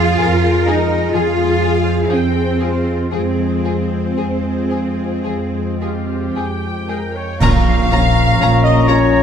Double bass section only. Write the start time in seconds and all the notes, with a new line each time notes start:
0.20 F2
1.14 F2
2.10 F2
3.13 F2
4.17 F2
5.26 F2
6.35 F2
7.41 A#1
8.40 A#1